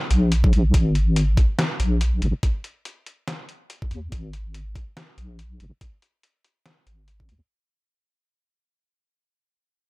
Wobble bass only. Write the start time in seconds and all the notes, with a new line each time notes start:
0.11 A#1
0.53 A#1
0.74 G#1
1.80 A#1
2.22 G#1
3.91 D#2
4.12 G#1
5.18 A#1
5.60 G#1
6.87 G#1
7.29 D#2